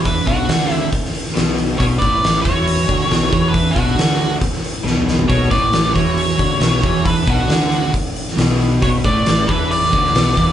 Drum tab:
HH |o-o-o-o-o-o-o-o-|o-o-o-o-o-o-o-o-|o-o-o-o-o-o-----|o-o-o-o-o-o-o-o-|
SD |----o----o-oo---|----o------oo---|----o----o--o-o-|----o-------o---|
T2 |----------------|----------------|-------------o--|----------------|
FT |----------------|----------------|---------------o|----------------|
BD |o-o-----o-------|o-o---o---o---o-|o-o-----o-------|o-o---o---o---o-|

HH |o-o-o-o-o-o-o-o-|o-o-o-o-o-o-o-o-|
SD |----o------oo---|----o----o-oo---|
T2 |----------------|----------------|
FT |----------------|----------------|
BD |o-o-----o-------|o-o---o---o---o-|